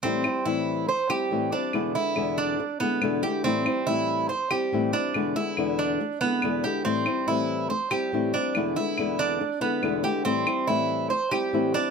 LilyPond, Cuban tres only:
\new Staff \with { instrumentName = "Cuban tres" } { \time 4/4 \key a \minor \tempo 4 = 141 c'4 e'4 c''8 g'4 d'8~ | d'8 e'4 d'4 b4 g'8 | c'4 e'4 c''8 g'4 d'8~ | d'8 e'4 d'4 b4 g'8 |
c'4 e'4 c''8 g'4 d'8~ | d'8 e'4 d'4 b4 g'8 | c'4 e'4 c''8 g'4 d'8 | }